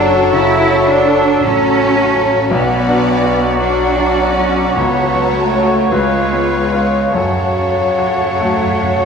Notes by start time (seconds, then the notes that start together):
Already playing: F#1 F#2 F#3 C#4 D4 F#4 A4 C#5 A5
0.33 C#3 E4
0.71 C#4
0.87 D4
1.08 A4
1.42 A1 F#3 C#4 F#4 A4 C#5
1.81 C#4
2.15 F#3
2.50 B1 F#3 B3 F#4 D5 F#5
2.88 D4
3.24 F#4
3.61 F#3 D4 F#4 D5
4.00 D4
4.18 C#4
4.38 F#3
4.76 C#2 C#3 B3 F#4 A4 C#5
5.15 F#3
5.33 A3
5.53 C#4 F#4
5.91 C#2 C#3 G#3 F4 B4 C#5 F5
6.33 B3
6.50 G#3
6.73 C#4 F4
7.14 F#2 F#3 F#4 A4 C#5 F#5
7.24 F#2
7.32 F#2
7.41 F#2
7.50 F#2
7.58 F#2 C#4
7.67 F#2
7.76 F#2
7.99 F#2 F#4
8.09 F#2
8.17 F#2
8.25 F#2
8.34 F#2
8.41 F#2 A3
8.50 F#2
8.58 F#2
8.66 F#2
8.74 F#2
8.80 F#2 C#4
8.91 F#2
8.99 F#2